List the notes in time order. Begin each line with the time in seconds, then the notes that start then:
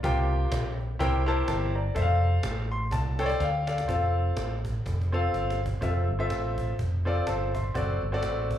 0.03 C2 C3 F4 G4 A#4 C5 G5, cajon bass
0.31 cajon slap
0.52 A#1, cajon bass, cajon slap
0.80 cajon slap
0.99 C2 C3 E4 G4 A#4 C5 G5, cajon bass
1.26 E4 G4 A#4 C5 A5, cajon slap
1.48 G1 C5 A5, cajon slap
1.62 cajon slap
1.75 D5 A#5, cajon slap
1.95 F1 A4 C5 E5, cajon bass
2.02 F5
2.22 cajon slap
2.43 A1, cajon slap
2.71 C6, cajon slap
2.91 C2 A5, cajon bass, cajon slap
3.19 A4 C5 C#5 G5, cajon slap
3.26 D5, cajon slap
3.40 D2 F5 G5, cajon slap
3.67 A4 D5 F5, cajon slap
3.78 cajon slap
3.88 F1 C4 F4 A4 F5, cajon bass
4.16 cajon slap
4.37 A1, cajon slap
4.65 cajon bass
4.86 F1, cajon bass, cajon slap
5.01 cajon slap
5.12 C4 F4 A4 F5, cajon slap
5.34 G1, cajon slap
5.50 cajon slap
5.62 cajon bass, cajon slap
5.81 F1 C4 F4 A4 E5, cajon bass
6.09 G1, cajon slap
6.19 C4 F4 A4 E5
6.30 A1, cajon slap
6.58 cajon bass
6.79 F1, cajon bass
7.05 C4 F4 A4 D5, cajon slap
7.27 G1 C5 A5, cajon slap
7.54 E5 C6, cajon bass
7.74 F#1 C4 F#4 A4 D5, cajon bass
8.02 G1, cajon slap
8.12 C4 F#4 A4 D5
8.23 A1, cajon slap
8.51 cajon bass